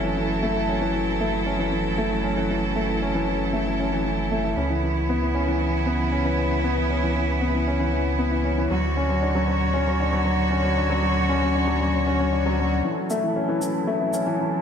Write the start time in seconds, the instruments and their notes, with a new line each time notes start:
Already playing: sub bass F#1, grand piano E3 A3 C#4, string quartet F#3 E4 A4
0.04 grand piano E3
0.17 grand piano E3
0.43 grand piano A3
0.56 grand piano E3
0.69 grand piano C#4
0.82 grand piano E3
0.95 grand piano E3
1.20 grand piano A3
1.34 grand piano E3
1.46 grand piano C#4
1.59 grand piano E3
1.72 grand piano E3
1.98 grand piano A3
2.11 grand piano E3
2.24 grand piano C#4
2.37 grand piano E3
2.51 grand piano E3
2.76 grand piano A3
2.89 grand piano E3
3.02 grand piano C#4
3.15 grand piano E3
3.27 grand piano E3
3.53 grand piano A3
3.67 grand piano E3
3.80 grand piano C#4
3.92 grand piano E3
4.06 grand piano E3
4.32 grand piano A3
4.45 grand piano E3
4.57 sub bass C#2, string quartet C#3 B3 E4, grand piano C#4
4.70 grand piano E3
4.83 grand piano E3
5.09 grand piano B3
5.22 grand piano E3
5.35 grand piano C#4
5.48 grand piano E3
5.60 grand piano E3
5.86 grand piano B3
5.99 grand piano E3
6.12 grand piano C#4
6.25 grand piano E3
6.38 grand piano E3
6.64 grand piano B3
6.77 grand piano E3
6.90 grand piano C#4
7.03 grand piano E3
7.16 grand piano E3
7.41 grand piano B3
7.54 grand piano E3
7.68 grand piano C#4
7.80 grand piano E3
7.93 grand piano E3
8.19 grand piano B3
8.32 grand piano E3
8.45 grand piano C#4
8.58 grand piano E3
8.70 sub bass D2, string quartet D3 F#4 C#5, grand piano F#3
8.97 grand piano C#4
9.09 grand piano F#3
9.22 grand piano D4
9.35 grand piano F#3
9.48 grand piano F#3
9.74 grand piano C#4
9.87 grand piano F#3
10.00 grand piano D4
10.12 grand piano F#3
10.25 grand piano F#3
10.51 grand piano C#4
10.64 grand piano F#3
10.77 grand piano D4
10.90 grand piano F#3
11.03 grand piano F#3
11.29 grand piano C#4
11.42 grand piano F#3
11.55 grand piano D4
11.67 grand piano F#3
11.81 grand piano F#3
12.06 grand piano C#4
12.20 grand piano F#3
12.33 grand piano D4
12.46 grand piano F#3
12.59 grand piano F#3
12.84 sub bass F#1, grand piano E3, string quartet F#3 E4 A4
13.10 grand piano A3, shaker
13.23 grand piano E3
13.36 grand piano C#4
13.49 grand piano E3
13.62 grand piano E3, shaker
13.87 grand piano A3
14.01 grand piano E3
14.13 grand piano C#4, shaker
14.27 grand piano E3
14.40 grand piano E3